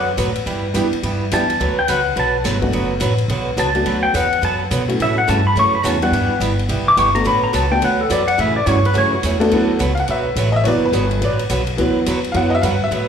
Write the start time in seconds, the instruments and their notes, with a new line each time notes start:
Already playing: upright bass F#2, steel-string acoustic guitar B3 F#4 B4
0.17 upright bass A2, steel-string acoustic guitar D3 F#3 B3 F#4 B4, hi-hat pedal, ride
0.36 ride
0.46 upright bass G2, steel-string acoustic guitar G3 B3 E4 G4, ride
0.74 upright bass F#2, honky-tonk piano G3 B3 D4 E4 G4, steel-string acoustic guitar G3 B3 E4 G4, hi-hat pedal, ride
0.93 muted upright bass stroke, ride
1.03 upright bass G2, steel-string acoustic guitar G3 B3 E4 G4, ride
1.31 upright bass E2, honky-tonk piano G3 B3 D4 E4 G4, steel-string acoustic guitar G3 B3 E4 G4, pedal steel guitar A5, hi-hat pedal, ride
1.50 ride
1.60 upright bass D2, steel-string acoustic guitar D3 F#3 B3 F#4 B4, ride
1.78 pedal steel guitar G5, muted upright bass stroke
1.88 upright bass C#2, steel-string acoustic guitar D3 F#3 B3 F#4 B4, pedal steel guitar F#5, hi-hat pedal, ride
2.16 upright bass B1, steel-string acoustic guitar D3 F#3 B3 F#4 B4, pedal steel guitar A5, ride
2.44 upright bass G1, steel-string acoustic guitar D3 F#3 B3 F#4 B4, snare, hi-hat pedal, ride
2.62 honky-tonk piano F#3 A3 B3 D4 F#4, kick, ride
2.72 upright bass F#1, steel-string acoustic guitar D3 F#3 B3 F#4 B4, ride
3.00 upright bass A1, steel-string acoustic guitar D3 F#3 B3 F#4 B4, hi-hat pedal, ride
3.18 ride
3.28 upright bass B1, steel-string acoustic guitar D3 F#3 B3 F#4 B4, ride
3.57 upright bass C#2, steel-string acoustic guitar D3 F#3 B3 F#4 B4, pedal steel guitar A5, hi-hat pedal, ride
3.75 honky-tonk piano F#3 A3 B3 D4 F#4, ride
3.85 upright bass D2, steel-string acoustic guitar D3 F#3 B3 F#4 B4, ride
4.03 pedal steel guitar G5
4.14 upright bass E2, steel-string acoustic guitar D3 F#3 B3 F#4 B4, pedal steel guitar F#5, hi-hat pedal, ride
4.33 ride
4.41 upright bass F#2, steel-string acoustic guitar D3 F#3 B3 F#4 B4, pedal steel guitar A5, ride
4.71 upright bass B2, steel-string acoustic guitar D3 F#3 B3 F#4 B4, hi-hat pedal, ride
4.88 honky-tonk piano F#3 A3 C#4 E4 F#4, ride
5.00 upright bass A2, steel-string acoustic guitar C#3 E3 A3 C#4 F#4, pedal steel guitar E5, ride
5.18 pedal steel guitar F#5
5.27 upright bass G2, steel-string acoustic guitar C#3 E3 A3 C#4 F#4, pedal steel guitar A5, hi-hat pedal, ride
5.47 pedal steel guitar B5
5.55 upright bass F#2, steel-string acoustic guitar C#3 E3 A3 C#4 F#4, pedal steel guitar C#6, ride
5.75 pedal steel guitar B5
5.83 upright bass E2, steel-string acoustic guitar C#3 E3 A3 C#4 F#4, pedal steel guitar A5, hi-hat pedal, ride
6.02 honky-tonk piano G3 B3 D4 E4 G4, pedal steel guitar F#5, ride
6.12 upright bass G2, steel-string acoustic guitar G3 B3 E4 G4, ride
6.29 muted upright bass stroke
6.40 upright bass G1, steel-string acoustic guitar G3 B3 E4 G4, hi-hat pedal, ride
6.59 ride
6.69 upright bass B1, steel-string acoustic guitar G3 B3 E4 G4, ride
6.86 pedal steel guitar D6, muted upright bass stroke
6.97 upright bass G1, steel-string acoustic guitar G3 B3 E4 G4, pedal steel guitar C#6, hi-hat pedal, ride
7.15 honky-tonk piano A3 B3 D4 F#4 A4, pedal steel guitar A#5, ride
7.24 upright bass A1, steel-string acoustic guitar D3 F#3 B3 F#4 B4, pedal steel guitar B5, ride
7.44 pedal steel guitar A#5
7.53 upright bass C#2, steel-string acoustic guitar D3 F#3 B3 F#4 B4, pedal steel guitar A5, hi-hat pedal, ride
7.71 honky-tonk piano A3 B3 D4 F#4 A4, pedal steel guitar G5
7.81 upright bass D2, steel-string acoustic guitar D3 F#3 B3 F#4 B4, pedal steel guitar F#5, ride
8.01 pedal steel guitar A4
8.10 upright bass F#2, steel-string acoustic guitar D3 F#3 B3 F#4 B4, pedal steel guitar D5, hi-hat pedal, ride
8.28 pedal steel guitar F#5, ride
8.38 upright bass A2, steel-string acoustic guitar C#3 E3 A3 C#4 F#4, pedal steel guitar E5, ride
8.56 pedal steel guitar D5
8.66 upright bass G2, steel-string acoustic guitar C#3 E3 A3 C#4 F#4, pedal steel guitar C#5, hi-hat pedal, ride
8.85 pedal steel guitar B4, ride
8.93 upright bass F#2, steel-string acoustic guitar C#3 E3 A3 C#4 F#4, ride
8.98 pedal steel guitar C#5
9.14 pedal steel guitar F#4
9.23 upright bass E2, steel-string acoustic guitar C#3 E3 A3 C#4 F#4, hi-hat pedal, ride
9.40 honky-tonk piano A3 B3 D4 F#4 A4, ride
9.51 upright bass D2, steel-string acoustic guitar D3 F#3 B3 F#4 B4, honky-tonk piano E3 F#3 B3, ride
9.79 upright bass C#2, steel-string acoustic guitar D3 F#3 B3 F#4 B4, hi-hat pedal, ride
9.95 honky-tonk piano F5, ride
10.00 honky-tonk piano F#5
10.08 upright bass B1, steel-string acoustic guitar D3 F#3 B3 F#4 B4, honky-tonk piano E5, ride
10.36 upright bass A1, steel-string acoustic guitar D3 F#3 B3 F#4 B4, hi-hat pedal, ride
10.56 honky-tonk piano E5
10.64 upright bass F#1, steel-string acoustic guitar D3 F#3 B3 F#4 B4, honky-tonk piano E3 F#3 B3 C#5, ride
10.68 honky-tonk piano D5
10.85 honky-tonk piano B4
10.92 upright bass G1, steel-string acoustic guitar D3 F#3 B3 F#4 B4, hi-hat pedal, ride
11.11 ride
11.22 upright bass A1, steel-string acoustic guitar D3 F#3 B3 F#4 B4, honky-tonk piano D5, ride
11.39 ride
11.49 upright bass B1, steel-string acoustic guitar D3 F#3 B3 F#4 B4, hi-hat pedal, ride
11.67 ride
11.77 upright bass D2, steel-string acoustic guitar D3 F#3 B3 F#4 B4, honky-tonk piano E3 F#3 B3, ride
11.96 muted upright bass stroke
12.06 upright bass E2, steel-string acoustic guitar D3 F#3 B3 F#4 B4, hi-hat pedal, ride
12.24 ride
12.32 upright bass F#2, steel-string acoustic guitar D3 F#3 B3 F#4 B4, honky-tonk piano E3 F#3 B3 F5, ride
12.36 honky-tonk piano F#5
12.55 honky-tonk piano E5
12.61 upright bass G2, steel-string acoustic guitar D3 F#3 B3 F#4 B4, honky-tonk piano F5 F#5, hi-hat pedal, ride
12.84 honky-tonk piano E5
12.91 upright bass A2, steel-string acoustic guitar D3 F#3 B3 F#4 B4, ride